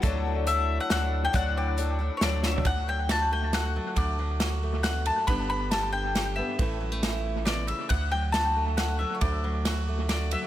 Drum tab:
RD |------------------|------------------|x-----x-----x-----|x-----x-----x--x--|
HH |x-----x-----x-----|x-----x-----x-----|------------------|------------------|
SD |------------o-----|------------o--o--|------o-----o-----|------o-----o-----|
FT |------------------|-----------------o|------------------|------------------|
BD |o-----------------|o-----------------|o-----------------|o-----------------|

RD |x-----x-----x-----|x-----x-----x--x--|x-----x-----x-----|x-----x-----x--x--|
HH |------------------|------------------|------------------|------------------|
SD |------o-----o-----|------o-----o-----|------o-----o-----|------o-----o-----|
FT |------------------|------------------|------------------|------------------|
BD |o-----------------|o-----------------|o-----------------|o-----------------|